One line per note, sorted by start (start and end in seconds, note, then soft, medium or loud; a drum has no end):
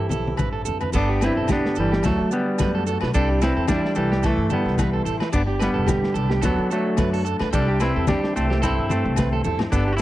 0.00 0.90 E3 medium
0.00 0.65 C4 medium
0.00 0.64 E4 medium
0.00 0.63 G4 medium
0.09 0.36 B1 medium
0.09 0.93 E4 medium
0.09 0.37 A4 medium
0.09 high tom soft
0.09 high conga medium
0.09 low conga medium
0.09 maracas medium
0.27 high tom soft
0.37 0.64 A1 medium
0.37 0.91 G2 medium
0.37 0.52 B4 medium
0.37 kick medium
0.37 mid tom medium
0.37 muted conga soft
0.37 high conga medium
0.37 low agogo medium
0.37 maracas medium
0.53 0.64 A4 medium
0.65 0.91 G1 medium
0.65 0.91 C4 medium
0.65 0.80 A4 medium
0.65 floor tom medium
0.65 maracas medium
0.81 0.93 B4 medium
0.81 floor tom medium
0.81 low agogo medium
0.81 maracas soft
0.92 1.30 G1 medium
0.92 2.00 G2 medium
0.92 2.00 B3 medium
0.92 1.20 B3 medium
0.92 1.49 D4 medium
0.92 1.76 G4 medium
0.92 1.08 A4 medium
0.92 3.12 D5 medium
0.92 2.03 G5 medium
0.92 2.03 B5 medium
0.92 kick medium
0.92 crash medium
0.92 maracas medium
0.97 1.21 D4 loud
1.09 1.21 G4 medium
1.21 1.48 C4 medium
1.21 1.49 E4 loud
1.21 1.36 B4 medium
1.21 snare medium
1.21 low agogo medium
1.21 maracas medium
1.37 1.60 E1 medium
1.37 1.49 A4 medium
1.47 2.03 D3 medium
1.47 1.75 G4 medium
1.47 kick medium
1.47 snare medium
1.47 high conga medium
1.47 low agogo medium
1.47 maracas medium
1.51 1.76 B3 medium
1.51 1.79 D4 medium
1.66 snare medium
1.75 2.00 G1 medium
1.75 2.04 E3 medium
1.75 2.01 G4 medium
1.75 1.91 A4 medium
1.75 maracas medium
1.80 2.06 G3 medium
1.92 2.03 G4 medium
1.92 snare medium
2.03 2.17 D2 loud
2.03 2.31 F#3 medium
2.03 2.32 A3 medium
2.03 3.11 D4 medium
2.03 2.60 F#4 medium
2.03 2.30 A4 medium
2.03 3.12 F#5 medium
2.03 3.12 A5 medium
2.03 muted steel-string acoustic guitar stroke medium
2.03 kick medium
2.03 snare medium
2.03 muted conga soft
2.03 high conga medium
2.03 low agogo medium
2.03 maracas medium
2.20 2.53 D3 medium
2.31 2.83 G3 medium
2.31 2.83 B3 medium
2.31 muted clean electric guitar stroke medium
2.31 muted conga soft
2.31 maracas medium
2.58 2.95 F#2 medium
2.58 3.12 A3 medium
2.58 2.87 F#4 medium
2.58 2.74 B4 medium
2.58 kick medium
2.58 snare medium
2.58 high conga medium
2.58 low agogo medium
2.58 maracas medium
2.75 2.86 A4 medium
2.87 3.12 F#4 medium
2.87 3.01 A4 medium
2.87 muted conga soft
2.87 maracas medium
3.01 3.12 B1 medium
3.01 3.13 B4 medium
3.01 snare medium
3.01 low agogo medium
3.14 3.50 C2 medium
3.14 3.69 C3 medium
3.14 3.40 G3 medium
3.14 5.33 G3 medium
3.14 3.42 D4 loud
3.14 3.69 E4 medium
3.14 3.28 A4 medium
3.14 5.31 E5 medium
3.14 5.31 G5 medium
3.14 5.31 C6 medium
3.14 kick medium
3.14 maracas medium
3.29 3.41 G4 medium
3.41 3.68 C4 medium
3.41 3.68 E4 loud
3.41 3.56 B4 medium
3.41 snare medium
3.41 low agogo medium
3.41 maracas medium
3.57 3.80 E2 medium
3.57 3.68 A4 medium
3.68 4.77 E3 medium
3.68 3.94 G3 medium
3.68 3.97 D4 medium
3.68 3.95 E4 medium
3.68 3.94 E4 medium
3.68 kick medium
3.68 snare medium
3.68 high conga loud
3.68 low agogo medium
3.68 maracas medium
3.85 snare medium
3.95 4.32 C2 medium
3.95 4.22 E3 medium
3.95 4.24 G3 medium
3.95 4.23 E4 medium
3.95 4.10 A4 medium
3.95 maracas medium
4.12 4.23 G4 medium
4.12 snare medium
4.23 4.50 E3 medium
4.23 4.53 A3 medium
4.23 5.04 E4 medium
4.23 4.49 A4 medium
4.23 muted steel-string acoustic guitar stroke medium
4.23 kick medium
4.23 snare medium
4.23 low agogo medium
4.23 maracas medium
4.38 4.61 G2 medium
4.50 5.03 G3 medium
4.50 5.03 B3 medium
4.50 4.76 A4 medium
4.50 muted conga soft
4.50 high conga medium
4.50 maracas medium
4.65 4.99 C2 medium
4.65 snare soft
4.78 5.30 E3 medium
4.78 4.93 B4 medium
4.78 kick medium
4.78 snare medium
4.78 high conga medium
4.78 low conga medium
4.78 low agogo medium
4.78 maracas medium
4.93 5.04 A4 medium
5.05 5.18 A1 medium
5.05 5.33 E4 medium
5.05 5.20 A4 medium
5.05 muted conga soft
5.05 maracas medium
5.20 5.32 B4 medium
5.20 snare medium
5.20 low agogo medium
5.32 5.69 G1 medium
5.32 6.40 G2 medium
5.32 6.40 B3 medium
5.32 5.42 B3 medium
5.32 5.41 D4 loud
5.32 5.86 D4 medium
5.32 6.14 G4 medium
5.32 7.50 D5 medium
5.32 6.42 G5 medium
5.32 6.42 B5 medium
5.32 muted clean electric guitar stroke medium
5.32 kick loud
5.32 maracas loud
5.47 5.60 G4 medium
5.59 6.40 G3 medium
5.59 6.43 B3 medium
5.59 5.73 B4 medium
5.59 snare medium
5.59 low agogo medium
5.59 maracas medium
5.74 5.99 E1 medium
5.74 5.86 A4 medium
5.86 6.42 D3 medium
5.86 6.40 D4 medium
5.86 6.13 G4 medium
5.86 kick medium
5.86 snare medium
5.86 high conga loud
5.86 low agogo medium
5.86 maracas medium
6.04 snare medium
6.14 6.38 C2 medium
6.14 6.40 G4 medium
6.14 6.29 A4 medium
6.14 maracas medium
6.30 6.42 G4 medium
6.30 snare medium
6.40 6.56 D2 loud
6.40 7.53 D3 medium
6.40 7.50 D4 medium
6.40 6.98 F#4 medium
6.40 6.68 A4 medium
6.40 7.50 F#5 medium
6.40 7.50 A5 medium
6.40 kick medium
6.40 snare medium
6.40 muted conga soft
6.40 high conga medium
6.40 low agogo medium
6.40 maracas medium
6.45 6.69 F#3 medium
6.45 6.69 B3 medium
6.58 6.92 D3 medium
6.70 7.22 F#3 medium
6.70 7.22 A3 medium
6.70 6.96 A4 medium
6.70 muted conga soft
6.70 maracas medium
6.97 7.34 F#2 medium
6.97 7.50 A3 medium
6.97 7.14 E4 medium
6.97 7.12 B4 medium
6.97 kick medium
6.97 snare medium
6.97 high conga medium
6.97 low agogo medium
6.97 maracas medium
7.13 7.26 F#4 medium
7.13 7.23 A4 medium
7.25 7.39 A4 medium
7.25 maracas medium
7.39 7.51 D2 medium
7.39 7.52 B4 medium
7.39 snare medium
7.39 low agogo medium
7.51 7.89 C2 medium
7.51 8.08 C3 medium
7.51 7.78 G3 medium
7.51 9.73 G3 medium
7.51 7.67 A4 medium
7.51 9.69 E5 medium
7.51 10.02 G5 medium
7.51 9.69 C6 medium
7.51 kick medium
7.51 maracas medium
7.55 8.08 C4 medium
7.55 7.79 D4 loud
7.55 8.35 E4 medium
7.68 7.80 G4 medium
7.80 8.06 C4 medium
7.80 8.06 E4 medium
7.80 7.94 B4 medium
7.80 snare medium
7.80 low agogo medium
7.80 maracas medium
7.96 8.19 E2 medium
7.96 8.07 A4 medium
8.07 9.18 E3 medium
8.07 8.34 G3 medium
8.07 8.63 C4 medium
8.07 8.33 D4 medium
8.07 8.34 G4 medium
8.07 kick medium
8.07 snare medium
8.07 high conga loud
8.07 low agogo medium
8.07 maracas medium
8.24 snare medium
8.36 8.72 C2 medium
8.36 8.61 A3 medium
8.36 8.61 C4 medium
8.36 9.45 E4 medium
8.36 8.50 A4 medium
8.36 maracas medium
8.50 8.61 G4 medium
8.50 snare medium
8.62 9.70 G2 medium
8.62 8.89 C4 medium
8.62 9.70 C4 medium
8.62 8.91 E4 medium
8.62 8.88 A4 medium
8.62 kick medium
8.62 snare medium
8.62 low agogo medium
8.62 maracas medium
8.78 9.01 G2 medium
8.89 9.42 A3 medium
8.89 9.41 C4 medium
8.89 9.16 A4 medium
8.89 muted conga soft
8.89 high conga medium
8.89 maracas medium
9.05 9.39 C2 medium
9.16 9.70 E3 medium
9.16 9.31 B4 medium
9.16 kick medium
9.16 snare medium
9.16 high conga medium
9.16 low agogo medium
9.16 maracas medium
9.32 9.43 A4 medium
9.32 high conga medium
9.44 9.57 E2 medium
9.44 9.73 E4 medium
9.44 9.59 A4 medium
9.44 low conga medium
9.44 maracas medium
9.59 snare medium
9.59 low conga medium
9.59 low agogo medium
9.70 10.02 G1 loud
9.70 10.02 G2 medium
9.70 9.92 B3 medium
9.70 9.92 D4 loud
9.70 10.02 D4 medium
9.70 9.86 A4 medium
9.70 10.02 D5 medium
9.70 10.02 B5 medium
9.70 muted steel-string acoustic guitar stroke medium
9.70 kick medium
9.70 muted conga soft
9.70 maracas medium
9.75 10.02 G4 medium
9.88 9.99 G4 medium
9.93 10.02 E4 medium
9.93 9.96 F#4 medium
9.98 maracas medium